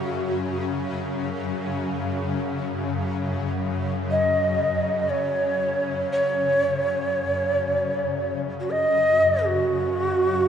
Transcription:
Already playing: F#2 C#3 F#4
4.11 D#5
4.99 D#5
5.10 C#5
6.12 C#5
7.51 F#2 C#3
8.60 F#4
8.71 D#5
9.45 F#4

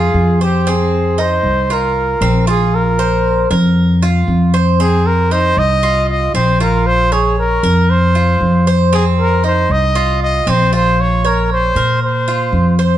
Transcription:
Already playing: F2 F4 G#4
0.14 F2
0.41 G4 C5
0.67 C4 G#4
1.18 D#4 C5
1.43 C2
1.70 F4 A#4
2.21 A#1 C4
2.47 F4 G#4
2.75 A#4
2.99 C5
3.50 F2 A#4
4.02 F4
4.28 F2
4.54 C5
4.80 C4 G#4
5.06 A#4
5.31 D#4 C5
5.57 C2 D#5
5.83 F4
6.09 D#5
6.34 A#1 C4 C5
6.60 F4 A#4
6.87 C5
7.12 G#4 C#5
7.38 A#4
7.63 F2 A#4
7.90 C5
8.15 F4
8.41 F2
8.67 C5
8.93 C4 G#4
9.20 A#4
9.44 D#4 C5
9.69 C2 D#5
9.95 F4
10.23 D#5
10.47 A#1 C4 C5
10.73 F4 C5
11.00 C#5
11.25 A#4 C#5
11.52 C5
11.75 A#2 A#4
12.03 C5
12.28 F4
12.53 F2
12.79 C5

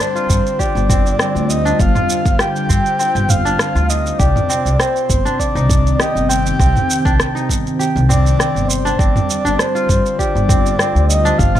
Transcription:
Already playing: D3 G3 C4 D4 D5 G5
0.00 C5, shaker
0.06 F4
0.15 F4, shaker
0.30 G2, kick, shaker
0.46 shaker
0.59 G4 D5, kick, shaker
0.70 C5
0.75 G1, shaker
0.89 C4, kick, mid tom, shaker
1.06 shaker
1.19 C4, cross-stick, shaker
1.35 D2, shaker
1.49 D#5, shaker
1.65 D4, shaker
1.79 G1 F5, kick, shaker
1.95 F4, mid tom, shaker
2.10 shaker
2.25 G1, kick, shaker
2.39 G4 G5, cross-stick, shaker
2.56 shaker
2.69 G2 C4, kick, shaker
2.86 shaker
2.99 C4, shaker
3.15 G1, shaker
3.29 F5, mid tom, shaker
3.45 D4, shaker
3.59 cross-stick, shaker
3.75 D2 F4, shaker
3.90 D#5, shaker
4.06 shaker
4.19 C2 C3 G4 D5, kick, shaker
4.36 mid tom, shaker
4.49 C4, shaker
4.62 C2 C4
4.66 shaker
4.79 C4 C5, cross-stick, shaker
4.96 shaker
5.10 G1, kick, shaker
5.22 D#3 D4
5.26 shaker
5.39 D5, kick, shaker
5.55 C2 D#4, shaker
5.70 kick, mid tom, shaker
5.87 shaker
6.00 G4 D#5, cross-stick, shaker
6.15 G1, shaker
6.29 C4 G5, shaker
6.46 shaker
6.59 C2 C4, kick, shaker
6.76 mid tom, shaker
6.90 shaker
7.05 C2 D4, kick, shaker
7.20 cross-stick, shaker
7.35 D#4, shaker
7.49 G1, kick, shaker
7.67 shaker
7.79 G4, shaker
7.96 C2, shaker
8.09 C4 D5, mid tom, shaker
8.27 shaker
8.39 C4, cross-stick, shaker
8.55 G1, shaker
8.68 C5, shaker
8.85 D4, shaker
8.98 G1 G3 C4 D5, kick, shaker
9.16 mid tom, shaker
9.22 D3
9.30 shaker
9.45 G1 D4, shaker
9.51 C5
9.58 F4 C5, cross-stick, shaker
9.75 F4, shaker
9.89 G2, kick, shaker
10.06 shaker
10.19 G4 D5, kick, shaker
10.35 G1, shaker
10.49 C4, kick, mid tom, shaker
10.58 G5
10.66 shaker
10.79 C4, cross-stick, shaker
10.95 D2, shaker
11.09 D#5, shaker
11.25 D4, shaker
11.38 G1 F5, kick, shaker
11.55 F4, mid tom, shaker

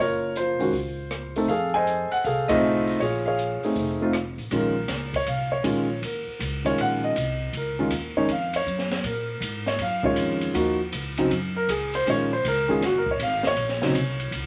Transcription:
Already playing: F#1
0.00 F4 A#4 C#5
0.36 F4 C5, closed hi-hat
0.59 F1 D#3 G#3 C#4 F#4, open hi-hat
0.73 C#2, kick, open hi-hat
1.11 cross-stick, closed hi-hat
1.36 A3 C4 D#4 A4, open hi-hat
1.48 F2 G#4 A4 F5, kick, open hi-hat
1.74 C5 D#5 G#5
1.87 closed hi-hat
2.11 F#5, muted upright bass stroke, open hi-hat
2.24 C2 G#4 A4 F5, kick, open hi-hat
2.48 A3 C4 D#4 F4 G#4 A4 D#5, kick, ride
2.88 open hi-hat
3.00 A#1 F4 G#4 C#5, kick, open hi-hat
3.26 G#4 C#5 F5
3.38 closed hi-hat
3.62 A3 C4 D#4 G#4, muted upright bass stroke, open hi-hat
3.75 F1, kick, open hi-hat
4.01 A3 C4 D#4 F4
4.13 cross-stick, closed hi-hat
4.38 A1, open hi-hat
4.51 A#1 D#3 G#3 C#4 F4, kick, ride
4.56 A#4
4.88 C#2, kick, snare, hi-hat pedal, ride
5.13 C#5, kick, ride
5.26 C2 F5, kick, ride
5.52 C#5
5.63 A#1 D#3 G#3 C#4 F4, kick, hi-hat pedal, ride
6.02 D#2 A#4, kick, ride
6.27 muted upright bass stroke
6.39 C#2, kick, hi-hat pedal, ride
6.65 D#3 G#3 C#4 F4 C#5, ride
6.78 A#1 F#5, kick, ride
7.04 D#5
7.15 C2, kick, hi-hat pedal, ride
7.53 C#2, kick, ride
7.57 A#4
7.79 D#3 G#3 C#4 F4
7.90 D#2, kick, hi-hat pedal, ride
8.17 D#3 G#3 C#4 D#4 C#5
8.28 F2 F5, kick, ride
8.53 C#5, ride
8.66 F#2, kick, hi-hat pedal
8.79 snare
8.91 snare, ride
9.03 A#2 A#4, kick, ride
9.40 G#2, kick, hi-hat pedal, ride
9.66 C#5, snare
9.78 F#2 F5, kick, ride
10.03 D#3 G#3 C#4 F4 C#5, kick
10.16 F2, kick, hi-hat pedal, ride
10.41 ride
10.53 D#2 F3 A#3 D#4 F#4, kick, ride
10.92 C#2, kick, hi-hat pedal, ride
11.17 C#3 F#3 C4 D#4, ride
11.30 F#2, kick, ride
11.56 A#4
11.68 C#2 G#4, kick, hi-hat pedal, ride
11.93 C5, ride
12.06 A#1 D#3 G#3 C#4 F4 C#5, kick, ride
12.33 C5
12.44 C#2 A#4, kick, hi-hat pedal, ride
12.68 D#3 G#3 C#4 F4 G#4
12.81 F#1 F#4, kick, snare, ride
12.98 A#4
13.06 kick
13.11 C#5
13.19 G#1 F5, kick, hi-hat pedal, ride
13.43 C#5, snare
13.56 A#1, kick, ride
13.69 snare
13.82 C#3 F#3 C4 D#4, snare
13.94 C2, kick, hi-hat pedal, ride
14.20 ride
14.31 C#2, kick, ride

